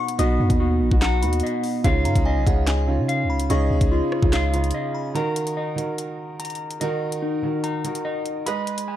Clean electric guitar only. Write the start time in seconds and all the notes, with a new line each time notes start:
Already playing: D#5 F#5
0.19 D#5
0.60 F#4
1.02 F#5
1.43 D#5
1.85 F5
2.26 D#5
3.08 F5
3.50 D#5
3.91 F4
4.33 F5
4.74 D#5
5.15 A#5
5.57 D#5
6.40 A#5
6.81 D#5
7.22 D#4
7.64 A#5
8.05 D#5
8.46 B5
8.88 G#5